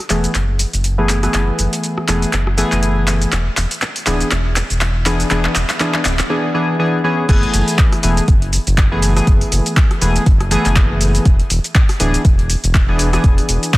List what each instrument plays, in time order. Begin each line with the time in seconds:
0.10 analog synth bass E1, synth keys E3 A3 B3 G#4, clap, open hi-hat, shaker
0.24 closed hi-hat, shaker
0.35 analog synth bass F#1, clap, closed hi-hat, shaker
0.59 open hi-hat, shaker
0.74 analog synth bass F#1, closed hi-hat, shaker
0.84 closed hi-hat, shaker
0.98 synth keys E3 A3 B3 G#4
1.09 clap, open hi-hat, shaker
1.23 synth keys E3 A3 B3 G#4, cross-stick, closed hi-hat, shaker
1.34 analog synth bass F#1, clap, closed hi-hat, shaker
1.59 analog synth bass F#1, open hi-hat, shaker
1.73 closed hi-hat, shaker
1.83 closed hi-hat, shaker
1.98 cross-stick
2.08 analog synth bass E1, synth keys E3 A3 B3 G#4, clap, open hi-hat, shaker
2.22 closed hi-hat, shaker
2.33 analog synth bass F#1, clap, closed hi-hat, shaker
2.47 cross-stick
2.57 synth keys E3 A3 B3 G#4, open hi-hat, shaker
2.72 analog synth bass F#1, clap, closed hi-hat, shaker
2.83 closed hi-hat, shaker
3.07 clap, open hi-hat, shaker
3.21 closed hi-hat, shaker
3.32 analog synth bass E1, clap, closed hi-hat, shaker
3.57 analog synth bass E1, clap, open hi-hat, shaker
3.71 closed hi-hat, shaker
3.82 clap, closed hi-hat, shaker
3.96 open hi-hat
4.06 analog synth bass D1, synth keys E3 B3 D4 G#4, clap, open hi-hat, shaker
4.21 closed hi-hat, shaker
4.31 analog synth bass E1, clap, closed hi-hat, shaker
4.56 clap, open hi-hat, shaker
4.70 analog synth bass E1, closed hi-hat, shaker
4.81 clap, closed hi-hat, shaker
5.06 synth keys E3 B3 D4 G#4, clap, open hi-hat, shaker
5.20 closed hi-hat, shaker
5.30 analog synth bass E1, synth keys E3 B3 D4 G#4, clap, closed hi-hat, shaker
5.45 clap
5.55 analog synth bass E1, clap, open hi-hat, shaker
5.69 clap, closed hi-hat, shaker
5.80 synth keys E3 B3 D4 G#4, clap, closed hi-hat, shaker
5.94 clap
6.05 analog synth bass D1, clap, open hi-hat, shaker
6.19 clap, closed hi-hat, shaker
6.30 synth keys E3 B3 D4 G#4
6.54 synth keys E3 B3 D4 G#4
6.79 synth keys E3 B3 D4 G#4
7.04 synth keys E3 B3 C#4 G#4
7.28 analog synth bass F#1, synth keys E3 A3 B3 G#4, kick, closed hi-hat, crash, shaker
7.43 closed hi-hat
7.54 analog synth bass F#1, open hi-hat, shaker
7.68 closed hi-hat, shaker
7.78 kick, clap, closed hi-hat, shaker
7.93 cross-stick, open hi-hat
8.03 analog synth bass E1, synth keys E3 A3 B3 G#4, open hi-hat, shaker
8.17 closed hi-hat, shaker
8.28 analog synth bass F#1, kick, closed hi-hat, shaker
8.42 closed hi-hat
8.53 open hi-hat, shaker
8.67 analog synth bass F#1, closed hi-hat, shaker
8.78 kick, clap, closed hi-hat, shaker
8.92 synth keys E3 A3 B3 G#4
9.02 open hi-hat, shaker
9.16 synth keys E3 A3 B3 G#4, cross-stick, closed hi-hat, shaker
9.27 analog synth bass F#1, kick, closed hi-hat, shaker
9.41 open hi-hat
9.52 analog synth bass F#1, open hi-hat, shaker
9.66 closed hi-hat, shaker
9.77 kick, clap, closed hi-hat, shaker
9.91 cross-stick, closed hi-hat
10.01 analog synth bass E1, synth keys E3 A3 B3 G#4, open hi-hat, shaker
10.16 closed hi-hat, shaker
10.26 analog synth bass F#1, kick, closed hi-hat, shaker
10.40 cross-stick, closed hi-hat
10.51 synth keys E3 A3 B3 G#4, open hi-hat, shaker
10.65 analog synth bass F#1, clap, closed hi-hat, shaker
10.76 kick, clap, closed hi-hat, shaker
11.01 open hi-hat, shaker
11.15 closed hi-hat, shaker
11.25 analog synth bass E1, kick, closed hi-hat, shaker
11.40 closed hi-hat
11.50 analog synth bass E1, open hi-hat, shaker
11.64 closed hi-hat, shaker
11.75 kick, clap, closed hi-hat, shaker
11.89 cross-stick, open hi-hat
12.00 analog synth bass D1, synth keys E3 B3 D4 G#4, open hi-hat, shaker
12.14 closed hi-hat, shaker
12.25 analog synth bass E1, kick, closed hi-hat, shaker
12.39 closed hi-hat
12.50 open hi-hat, shaker
12.64 analog synth bass E1, closed hi-hat, shaker
12.74 kick, clap, closed hi-hat, shaker
12.88 synth keys E3 B3 D4 G#4
12.99 open hi-hat, shaker
13.13 synth keys E3 B3 D4 G#4, cross-stick, closed hi-hat, shaker
13.24 analog synth bass E1, kick, closed hi-hat, shaker
13.38 open hi-hat
13.49 analog synth bass E1, open hi-hat, shaker
13.63 closed hi-hat, shaker
13.74 kick, clap, closed hi-hat, shaker